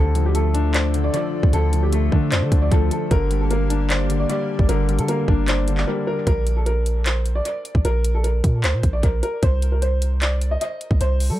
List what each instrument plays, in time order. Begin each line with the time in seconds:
Already playing: 808-style bass D2, grand piano D3 A4, analog synth pad D3 A3 F4 A4
0.15 grand piano F3, closed hi-hat
0.26 grand piano G4
0.34 grand piano A3 A4, closed hi-hat
0.54 grand piano D4, closed hi-hat
0.74 grand piano C5 D5, clap, closed hi-hat
0.94 grand piano D3, closed hi-hat
1.04 grand piano D5
1.14 grand piano F3 D5, closed hi-hat
1.43 808-style bass D2, kick
1.53 808-style bass D2, grand piano D3 A4, closed hi-hat
1.73 grand piano F3, closed hi-hat
1.83 grand piano G4
1.93 grand piano A3 A4, closed hi-hat
2.12 808-style bass D3, grand piano D4, kick
2.31 808-style bass F2, grand piano C5 D5, clap, closed hi-hat
2.42 808-style bass D3
2.52 808-style bass D2, grand piano D3, kick, closed hi-hat
2.62 grand piano D5
2.71 808-style bass D2, grand piano F3 A4, kick, closed hi-hat
2.91 grand piano A4, closed hi-hat
3.11 808-style bass G1, grand piano D3 A#4, analog synth pad A#3 G4 A#4, kick, closed hi-hat
3.31 grand piano G3, closed hi-hat
3.41 grand piano A4
3.51 grand piano A#3 A#4, closed hi-hat
3.70 grand piano D4, closed hi-hat
3.89 grand piano C5 D5, clap, closed hi-hat
4.10 grand piano D3, closed hi-hat
4.20 grand piano D5
4.29 grand piano G3 D5, closed hi-hat
4.59 808-style bass G1, kick
4.69 808-style bass G1, grand piano D3 A#4, closed hi-hat
4.89 grand piano G3, closed hi-hat
4.99 808-style bass D3, grand piano A4, closed hi-hat
5.08 grand piano A#3 A#4, closed hi-hat
5.28 808-style bass G1, grand piano D4, kick
5.48 grand piano C5 D5, clap, closed hi-hat
5.68 grand piano D3, closed hi-hat
5.78 grand piano D5, clap
5.87 grand piano G3 A#4
6.07 grand piano A#4
6.27 808-style bass A#1, grand piano A#4, kick, closed hi-hat
6.47 closed hi-hat
6.57 grand piano A4
6.66 grand piano A#4, closed hi-hat
6.86 closed hi-hat
7.05 grand piano C5, clap, closed hi-hat
7.26 closed hi-hat
7.35 grand piano D5
7.45 grand piano D5, closed hi-hat
7.65 closed hi-hat
7.75 808-style bass A#1, kick
7.85 808-style bass A#1, grand piano A#4, closed hi-hat
8.04 closed hi-hat
8.15 grand piano A4
8.24 grand piano A#4, closed hi-hat
8.44 808-style bass A#2, kick, closed hi-hat
8.64 808-style bass D2, grand piano C5, clap, closed hi-hat
8.74 808-style bass A#2
8.83 808-style bass A#1, kick, closed hi-hat
8.93 grand piano D5
9.03 808-style bass A#1, grand piano A#4, kick, closed hi-hat
9.23 grand piano A#4, closed hi-hat
9.43 808-style bass C2, grand piano C5, kick, closed hi-hat
9.62 closed hi-hat
9.72 grand piano A#4
9.82 grand piano C5, closed hi-hat
10.02 closed hi-hat
10.22 grand piano D5, clap, closed hi-hat
10.41 closed hi-hat
10.51 grand piano D#5
10.61 grand piano D#5, closed hi-hat
10.81 closed hi-hat
10.91 808-style bass C2, kick
11.01 808-style bass C2, grand piano C5, closed hi-hat
11.20 open hi-hat
11.30 808-style bass G3, grand piano A4